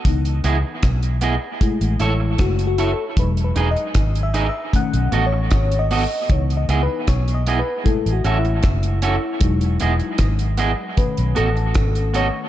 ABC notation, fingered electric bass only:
X:1
M:4/4
L:1/16
Q:1/4=77
K:F#dor
V:1 name="Fingered electric bass" clef=bass
C,,2 C,, z B,,,3 z2 A,,, A,,,2 F,,,3 z | E,,,2 E,,, z G,,,3 z2 B,,, A,,,2 G,,,3 z | C,,2 C,, z B,,,3 z2 A,,, A,,,2 F,,,3 z | E,,,2 E,,, z G,,,3 z2 B,,, A,,,2 G,,,3 z |]